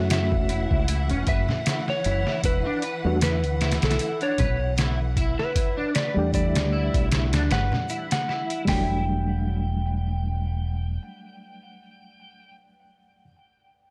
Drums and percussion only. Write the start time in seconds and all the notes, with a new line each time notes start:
0.10 snare, closed hi-hat, shaker
0.32 kick
0.49 closed hi-hat
0.71 kick
0.88 closed hi-hat
1.10 closed hi-hat
1.27 kick, closed hi-hat
1.49 snare, low conga
1.66 snare, closed hi-hat, shaker
1.88 snare
2.04 closed hi-hat
2.27 snare
2.44 kick, closed hi-hat
2.82 closed hi-hat
3.21 snare, closed hi-hat, shaker
3.44 closed hi-hat
3.61 snare, closed hi-hat
3.72 snare, closed hi-hat
3.82 snare, closed hi-hat
3.91 snare, closed hi-hat
3.99 closed hi-hat
4.21 closed hi-hat
4.38 kick, closed hi-hat, low conga
4.77 snare, closed hi-hat, shaker
5.17 kick, closed hi-hat
5.39 snare
5.56 kick, closed hi-hat
5.95 snare, closed hi-hat
6.34 kick, closed hi-hat, shaker
6.55 snare, closed hi-hat
6.94 kick, closed hi-hat
7.12 snare, closed hi-hat
7.33 snare, closed hi-hat
7.51 snare, closed hi-hat
7.72 snare, low conga
7.89 closed hi-hat, shaker
8.11 snare, closed hi-hat
8.29 snare
8.50 closed hi-hat
8.67 kick, snare, open hi-hat